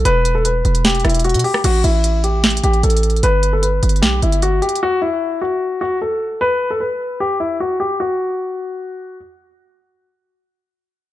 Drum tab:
CC |------------------------------------------------------------------------------------------------|x-----------------------------------------------------------------------------------------------|------------------------------------------------------------------------------------------------|------------------------------------------------------------------------------------------------|
HH |x-----------x-----------x-----------x-----x-----x--x--x--x--x--x--x--x--x--x--x--x--o-----------|x-----------x-----------x-----------x-----------x---x---x---x-----x-----x---x---x---x---x---x---|x-----------x-----------x-----------x---x---x---x-----------x-----x-----x-----------x---x---x---|------------------------------------------------------------------------------------------------|
SD |------------------------------------------------o-----------r-----------------------------r-----|------------------------------------------------o-----------------------------------------------|------------------------------------------------o-----------------------------------------------|------------------------------------------------------------------------------------------------|

CC |------------------------------------------------------------------------------------------------|------------------------------------------------------------------------------------------------|------------------------------------------------------------------------------------------------|
HH |------------------------------------------------------------------------------------------------|------------------------------------------------------------------------------------------------|------------------------------------------------------------------------------------------------|
SD |------------------------------------------------------------------------------------------------|------------------------------------------------------------------------------------------------|------------------------------------------------------------------------------------------------|